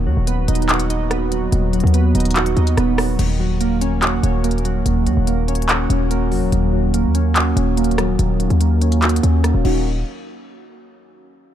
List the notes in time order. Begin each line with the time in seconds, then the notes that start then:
Already playing: D#2
0.07 D#2 F#3
0.17 D#1
0.27 B3, closed hi-hat
0.48 D#1 D#4, closed hi-hat
0.55 closed hi-hat
0.62 closed hi-hat
0.69 F#4, clap, closed hi-hat
0.80 closed hi-hat
0.90 D#4, closed hi-hat
1.11 B3, cross-stick, closed hi-hat
1.32 F#3, closed hi-hat
1.52 D#1 D#2, closed hi-hat
1.73 F#3, closed hi-hat
1.80 D#2, closed hi-hat
1.87 closed hi-hat
1.94 B3, closed hi-hat
2.15 D#1 D#4, closed hi-hat
2.20 closed hi-hat
2.25 closed hi-hat
2.31 closed hi-hat
2.36 F#4, clap, closed hi-hat
2.46 closed hi-hat
2.57 D#2 D#4, closed hi-hat
2.67 closed hi-hat
2.77 D#1 B3, cross-stick, closed hi-hat
2.98 F#3, cross-stick, open hi-hat
3.19 D#1 D#2, closed hi-hat, crash
3.40 F#3
3.61 A#3, closed hi-hat
3.81 C#4, closed hi-hat
4.02 F#4, clap, closed hi-hat
4.23 D#1 C#4, closed hi-hat
4.44 A#3, closed hi-hat
4.51 closed hi-hat
4.58 closed hi-hat
4.65 F#3, closed hi-hat
4.86 D#1 D#2, closed hi-hat
5.07 D#2 F#3, closed hi-hat
5.17 D#1
5.27 A#3, closed hi-hat
5.48 C#4, closed hi-hat
5.55 closed hi-hat
5.62 closed hi-hat
5.69 F#4, clap, closed hi-hat
5.90 D#1 C#4, closed hi-hat
6.11 A#3, closed hi-hat
6.32 F1 F#3, open hi-hat
6.42 D#1
6.52 D#1 D#2, closed hi-hat
6.73 F#3
6.94 A#3, closed hi-hat
7.04 D#2
7.15 C#4, closed hi-hat
7.36 F#4, clap, closed hi-hat
7.57 D#1 C#4, closed hi-hat
7.77 A#3, closed hi-hat
7.84 closed hi-hat
7.91 closed hi-hat
7.98 F#3, cross-stick, closed hi-hat
8.19 D#1 D#2, closed hi-hat
8.40 F#3, closed hi-hat
8.50 D#2, closed hi-hat
8.61 A#3, closed hi-hat
8.81 C#4, closed hi-hat, open hi-hat
8.92 closed hi-hat
9.02 F#4, clap, closed hi-hat
9.09 closed hi-hat
9.16 closed hi-hat
9.23 D#2 C#4, closed hi-hat
9.44 A#3, cross-stick, closed hi-hat
9.54 D#1
9.65 D#1 A#3 C#4 D#4 F#4, crash